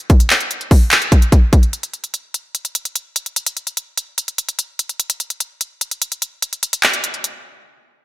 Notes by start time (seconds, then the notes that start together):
0.10 kick, closed hi-hat
0.20 closed hi-hat
0.30 clap, closed hi-hat
0.40 closed hi-hat
0.51 closed hi-hat
0.61 closed hi-hat
0.71 kick, open hi-hat
0.91 clap, closed hi-hat
1.02 closed hi-hat
1.12 kick, closed hi-hat
1.22 closed hi-hat
1.32 kick, closed hi-hat
1.53 kick, closed hi-hat
1.63 closed hi-hat
1.73 closed hi-hat
1.83 closed hi-hat
1.94 closed hi-hat
2.04 closed hi-hat
2.14 closed hi-hat
2.34 closed hi-hat
2.55 closed hi-hat
2.65 closed hi-hat
2.75 closed hi-hat
2.85 closed hi-hat
2.96 closed hi-hat
3.16 closed hi-hat
3.26 closed hi-hat
3.36 closed hi-hat
3.46 closed hi-hat
3.57 closed hi-hat
3.67 closed hi-hat
3.77 closed hi-hat
3.97 closed hi-hat
4.18 closed hi-hat
4.28 closed hi-hat
4.38 closed hi-hat
4.49 closed hi-hat
4.59 closed hi-hat
4.79 closed hi-hat
4.89 closed hi-hat
5.00 closed hi-hat
5.10 closed hi-hat
5.20 closed hi-hat
5.30 closed hi-hat
5.40 closed hi-hat
5.61 closed hi-hat
5.81 closed hi-hat
5.91 closed hi-hat
6.02 closed hi-hat
6.12 closed hi-hat
6.22 closed hi-hat
6.42 closed hi-hat
6.53 closed hi-hat
6.63 closed hi-hat
6.73 closed hi-hat
6.83 clap, closed hi-hat
6.93 closed hi-hat
7.04 closed hi-hat
7.14 closed hi-hat
7.24 closed hi-hat